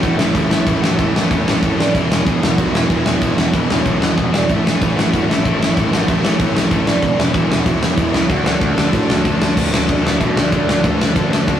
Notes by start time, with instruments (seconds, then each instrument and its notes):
Already playing: lead electric guitar F#4 F#5
0.03 picked electric bass E2, distorted electric guitar A2 E3 A3, kick, crash
0.17 picked electric bass A1, distorted electric guitar A2 E3 A3, lead electric guitar E4 E5, snare
0.33 picked electric bass A1, distorted electric guitar A2 E3 A3, kick, crash
0.48 picked electric bass A1, distorted electric guitar A2 E3 A3, lead electric guitar E4 E5, snare
0.65 picked electric bass A1, distorted electric guitar A2 E3 A3, kick, crash
0.81 picked electric bass A1, distorted electric guitar A2 E3 A3, lead electric guitar F#4 F#5, snare
0.97 picked electric bass A1, distorted electric guitar A2 E3 A3, lead electric guitar E4 E5, kick, crash
1.13 picked electric bass A1, distorted electric guitar A2 E3 A3, lead electric guitar C#4 C#5, snare
1.28 picked electric bass E2, distorted electric guitar A2 E3 A3, kick, crash
1.45 picked electric bass A1, distorted electric guitar A2 E3 A3, snare
1.61 picked electric bass A1, distorted electric guitar A2 E3 A3, kick, crash
1.77 picked electric bass A1, distorted electric guitar A2 E3 A3, lead electric guitar D4 D5, snare
1.92 picked electric bass E1, distorted electric guitar E2 B2 E3, lead electric guitar E4 E5, kick, crash
2.09 picked electric bass E1, distorted electric guitar E2 B2 E3, lead electric guitar G#4 G#5, snare
2.25 picked electric bass E1, distorted electric guitar E2 B2 E3, kick, crash
2.41 picked electric bass E1, distorted electric guitar E2 B2 E3, lead electric guitar F#4 F#5, snare
2.57 picked electric bass B1, distorted electric guitar E2 B2 E3, kick, crash
2.72 picked electric bass E1, distorted electric guitar E2 B2 E3, lead electric guitar E4 E5, snare
2.88 picked electric bass E1, distorted electric guitar E2 B2 E3, kick, crash
3.05 picked electric bass E1, distorted electric guitar E2 B2 E3, lead electric guitar E4 E5, snare
3.20 picked electric bass E1, distorted electric guitar E2 B2 E3, kick, crash
3.37 picked electric bass E1, distorted electric guitar E2 B2 E3, lead electric guitar F#4 F#5, snare
3.52 picked electric bass E1, distorted electric guitar E2 B2 E3, lead electric guitar E4 E5, kick, crash
3.67 picked electric bass E1, distorted electric guitar E2 B2 E3, lead electric guitar C#4 C#5, snare
3.85 picked electric bass B1, distorted electric guitar E2 B2 E3, kick, crash
4.00 picked electric bass E1, distorted electric guitar E2 B2 E3, snare
4.15 picked electric bass E1, distorted electric guitar E2 B2 E3, kick, crash
4.32 picked electric bass E1, distorted electric guitar E2 B2 E3, lead electric guitar D4 D5, snare
4.47 picked electric bass A1, distorted electric guitar A2 E3 A3, lead electric guitar E4 E5, kick, crash
4.63 picked electric bass A1, distorted electric guitar A2 E3 A3, lead electric guitar G#4 G#5
4.67 snare
4.79 picked electric bass A1, distorted electric guitar A2 E3 A3, kick, crash
4.96 picked electric bass A1, distorted electric guitar A2 E3 A3, lead electric guitar F#4 F#5, snare
5.12 picked electric bass E2, distorted electric guitar A2 E3 A3, kick, crash
5.27 picked electric bass A1, distorted electric guitar A2 E3 A3, lead electric guitar E4 E5
5.31 snare
5.43 picked electric bass A1, distorted electric guitar A2 E3 A3, kick, crash
5.59 picked electric bass A1, distorted electric guitar A2 E3 A3, lead electric guitar E4, snare
5.63 lead electric guitar E5
5.74 picked electric bass A1, distorted electric guitar A2 E3 A3, kick, crash
5.89 picked electric bass A1, distorted electric guitar A2 E3 A3
5.93 lead electric guitar F#4 F#5, snare
6.05 picked electric bass A1, distorted electric guitar A2 E3 A3, lead electric guitar E4 E5, kick, crash
6.22 picked electric bass A1, distorted electric guitar A2 E3 A3, lead electric guitar C#4 C#5, snare
6.37 picked electric bass E2, distorted electric guitar A2 E3 A3, kick, crash
6.53 picked electric bass A1, distorted electric guitar A2 E3 A3, snare
6.70 picked electric bass A1, distorted electric guitar A2 E3 A3, kick, crash
6.86 picked electric bass F#1, distorted electric guitar A2 E3 A3, lead electric guitar D4 D5, snare
7.02 picked electric bass E1, distorted electric guitar E2 B2 E3, kick, crash
7.17 picked electric bass E1, distorted electric guitar E2 B2 E3, lead electric guitar E4 E5, snare
7.34 picked electric bass E1, distorted electric guitar E2 B2 E3, kick, crash
7.49 picked electric bass E1, distorted electric guitar E2 B2 E3, lead electric guitar G#4 G#5, snare
7.58 lead electric guitar F#4 F#5
7.65 picked electric bass B1, distorted electric guitar E2 B2 E3, lead electric guitar E4 E5, kick, crash
7.80 picked electric bass E1, distorted electric guitar E2 B2 E3, snare
7.97 picked electric bass E1, distorted electric guitar E2 B2 E3, kick, crash
8.13 picked electric bass C#2, distorted electric guitar E2 B2 E3, snare
8.29 picked electric bass D2, distorted electric guitar D3 A3 D4, lead electric guitar F#4 F#5, kick, crash
8.44 picked electric bass D2, distorted electric guitar D3 A3 D4, snare
8.60 picked electric bass D2, distorted electric guitar D3 A3 D4, kick, crash
8.76 picked electric bass D2, distorted electric guitar D3 A3 D4, snare
8.92 picked electric bass A2, distorted electric guitar D3 A3 D4, kick, crash
9.07 picked electric bass D2, distorted electric guitar D3 A3 D4, snare
9.23 picked electric bass D2, distorted electric guitar D3 A3 D4, kick, crash
9.40 picked electric bass D2, distorted electric guitar D3 A3 D4, snare
9.56 picked electric bass D2, distorted electric guitar D3 A3 D4, kick, crash
9.72 picked electric bass D2, distorted electric guitar D3 A3 D4, snare
9.87 picked electric bass D2, distorted electric guitar D3 A3 D4, lead electric guitar B4 E5, kick, ride
10.02 distorted electric guitar D3 A3 D4, lead electric guitar B4 E5
10.07 snare
10.18 picked electric bass B2, distorted electric guitar D3 A3 D4, lead electric guitar B4 E5, kick, ride
10.36 picked electric bass D2, distorted electric guitar D3 A3 D4, lead electric guitar F#4 D5, snare
10.51 picked electric bass D2, distorted electric guitar D3 A3 D4, lead electric guitar F#4 D5, kick, ride
10.66 distorted electric guitar D3 A3 D4, lead electric guitar F#4 D5, snare
10.80 picked electric bass D2, distorted electric guitar D3 A3 D4, lead electric guitar D4 B4, kick
10.84 ride
10.97 picked electric bass D2, distorted electric guitar D3 A3 D4, lead electric guitar D4 B4
11.02 snare
11.14 picked electric bass D2, distorted electric guitar D3 A3 D4, lead electric guitar D4 B4, kick, ride
11.30 picked electric bass D2, distorted electric guitar D3 A3 D4, lead electric guitar A4, snare
11.47 picked electric bass D2, distorted electric guitar D3 A3 D4, kick, ride